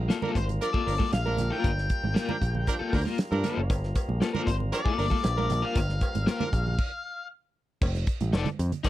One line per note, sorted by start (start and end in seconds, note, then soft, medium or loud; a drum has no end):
0.00 6.75 G3 medium
0.00 6.75 A#3 medium
0.00 6.75 F4 medium
0.00 6.75 A#4 medium
0.09 0.21 A#3 medium
0.09 0.21 F4 medium
0.09 0.20 A4 medium
0.09 snare loud
0.09 closed hi-hat medium
0.09 muted conga soft
0.22 0.30 F3 medium
0.22 0.38 A#3 medium
0.22 0.31 D4 medium
0.22 0.38 F4 medium
0.22 0.37 A4 medium
0.22 0.30 A#4 loud
0.22 muted conga soft
0.22 high conga medium
0.22 low conga medium
0.35 0.58 G#1 loud
0.35 0.44 C5 medium
0.35 kick medium
0.35 closed hi-hat medium
0.49 closed hi-hat medium
0.49 low conga medium
0.61 0.69 F3 medium
0.61 0.69 D4 medium
0.61 0.69 A#4 medium
0.61 1.12 D5 medium
0.61 snare soft
0.61 closed hi-hat medium
0.73 0.90 A#3 medium
0.73 0.89 F4 medium
0.73 0.89 A4 medium
0.73 muted picked electric bass stroke soft
0.73 kick medium
0.73 muted conga soft
0.86 0.99 G1 medium
0.86 0.95 F3 medium
0.86 0.95 D4 medium
0.86 0.95 A#4 medium
0.86 open hi-hat medium
0.98 1.12 A#3 medium
0.98 1.11 F4 medium
0.98 1.11 A4 medium
0.98 kick loud
0.98 high conga medium
1.13 1.36 A#1 medium
1.13 1.52 F5 loud
1.13 snare loud
1.13 closed hi-hat loud
1.26 1.62 F3 medium
1.26 1.62 D4 medium
1.26 1.63 A#4 loud
1.26 high conga medium
1.38 1.50 A#1 medium
1.38 snare soft
1.38 closed hi-hat medium
1.38 high conga medium
1.38 low conga medium
1.50 1.72 A#3 medium
1.50 1.72 F4 medium
1.50 1.71 A#4 medium
1.50 3.02 G5 loud
1.64 1.87 G1 medium
1.64 kick loud
1.64 closed hi-hat medium
1.64 muted conga soft
1.78 snare soft
1.90 kick loud
1.90 closed hi-hat medium
2.04 2.15 G#1 medium
2.04 high conga medium
2.14 2.30 A#3 medium
2.14 2.31 F4 loud
2.14 2.31 A#4 loud
2.14 snare loud
2.14 closed hi-hat medium
2.14 muted conga soft
2.29 2.37 F3 medium
2.29 2.37 D4 medium
2.29 2.37 A#4 medium
2.29 muted conga soft
2.29 high conga medium
2.29 low conga medium
2.42 2.65 A#1 medium
2.42 kick medium
2.42 closed hi-hat medium
2.55 low conga medium
2.67 2.75 F3 medium
2.67 2.75 D4 medium
2.67 2.75 A#4 loud
2.67 kick medium
2.67 snare soft
2.67 closed hi-hat medium
2.67 muted conga soft
2.79 2.96 A#3 medium
2.79 2.95 F4 medium
2.79 2.95 A4 medium
2.79 muted picked electric bass stroke soft
2.93 3.05 D2 medium
2.93 3.02 F3 medium
2.93 3.01 D4 medium
2.93 3.01 A#4 medium
2.93 kick medium
2.93 open hi-hat medium
3.05 3.18 A#3 medium
3.05 3.18 F4 medium
3.05 3.17 A#4 medium
3.05 snare soft
3.05 high conga medium
3.18 snare loud
3.18 closed hi-hat loud
3.31 3.43 G2 loud
3.31 3.68 F3 medium
3.31 3.68 D4 loud
3.31 3.68 A#4 loud
3.31 muted conga soft
3.31 high conga medium
3.44 3.59 A#3 medium
3.44 3.60 F4 medium
3.44 3.60 A4 medium
3.44 snare soft
3.44 closed hi-hat medium
3.44 high conga medium
3.44 low conga medium
3.57 3.70 F#1 medium
3.70 3.93 G1 loud
3.70 kick loud
3.70 closed hi-hat medium
3.70 cowbell medium
3.83 snare soft
3.95 kick medium
3.95 closed hi-hat medium
3.95 cowbell medium
4.09 4.20 A#1 medium
4.09 high conga medium
4.21 4.33 A#3 medium
4.21 4.33 F4 medium
4.21 4.32 A4 medium
4.21 snare loud
4.21 closed hi-hat medium
4.21 cowbell medium
4.21 muted conga soft
4.33 4.42 F3 medium
4.33 4.50 A#3 medium
4.33 4.42 D4 medium
4.33 4.50 F4 medium
4.33 4.49 A4 medium
4.33 4.42 A#4 loud
4.33 muted conga soft
4.33 high conga medium
4.33 low conga medium
4.47 4.70 G#1 medium
4.47 4.54 C5 medium
4.47 kick medium
4.47 closed hi-hat medium
4.60 low conga medium
4.72 4.80 F3 medium
4.72 4.80 D4 medium
4.72 4.80 A#4 loud
4.72 5.66 D5 medium
4.72 snare soft
4.72 closed hi-hat medium
4.72 cowbell medium
4.85 5.06 A#3 medium
4.85 5.06 F4 medium
4.85 5.05 A4 medium
4.85 muted picked electric bass stroke soft
4.85 kick medium
4.85 muted conga soft
4.98 5.10 G1 medium
4.98 5.07 F3 medium
4.98 5.07 D4 loud
4.98 5.07 A#4 medium
4.98 open hi-hat medium
5.10 5.24 A#3 medium
5.10 5.23 F4 medium
5.10 5.23 A4 medium
5.10 kick medium
5.10 high conga medium
5.24 5.47 A#1 medium
5.24 snare loud
5.24 closed hi-hat medium
5.24 cowbell medium
5.24 muted conga soft
5.37 5.74 F3 loud
5.37 5.74 D4 medium
5.37 5.74 A#4 loud
5.37 muted conga soft
5.37 high conga medium
5.50 5.62 A#1 medium
5.50 snare soft
5.50 closed hi-hat medium
5.50 high conga medium
5.50 low conga medium
5.62 5.79 A#3 medium
5.62 5.78 F4 medium
5.62 5.78 A#4 medium
5.62 7.27 F5 loud
5.75 5.99 G1 loud
5.75 kick loud
5.75 closed hi-hat medium
5.75 cowbell medium
5.75 muted conga soft
5.89 snare soft
5.89 muted conga soft
6.01 kick medium
6.01 closed hi-hat medium
6.01 cowbell medium
6.15 6.26 G#1 medium
6.15 closed hi-hat medium
6.15 high conga medium
6.27 6.42 A#3 medium
6.27 6.43 F4 medium
6.27 6.43 A#4 loud
6.27 snare loud
6.27 closed hi-hat medium
6.27 cowbell medium
6.27 muted conga soft
6.40 6.48 F3 medium
6.40 6.48 D4 medium
6.40 6.48 A#4 loud
6.40 muted conga soft
6.40 high conga medium
6.40 low conga medium
6.53 6.76 A#1 medium
6.53 kick medium
6.53 closed hi-hat medium
6.67 low conga medium
6.78 kick loud
6.78 crash medium
7.82 8.05 F1 loud
7.82 kick loud
7.82 crash loud
7.82 cowbell medium
7.82 muted conga soft
7.95 snare soft
7.95 closed hi-hat soft
7.95 muted conga soft
8.07 kick loud
8.07 closed hi-hat medium
8.21 8.32 A1 medium
8.21 closed hi-hat medium
8.21 high conga medium
8.33 8.45 F1 medium
8.33 8.48 D#4 medium
8.33 8.48 A4 loud
8.33 8.49 D5 loud
8.33 snare loud
8.33 cowbell medium
8.33 muted conga soft
8.46 closed hi-hat soft
8.46 muted conga soft
8.46 high conga medium
8.46 low conga loud
8.59 8.71 F2 loud
8.59 closed hi-hat medium
8.72 closed hi-hat medium
8.72 low conga medium
8.83 8.89 D#4 medium
8.83 8.89 A4 medium
8.83 8.89 D5 medium
8.83 kick medium
8.83 snare soft
8.83 closed hi-hat medium
8.83 cowbell medium
8.83 muted conga soft
8.83 high conga medium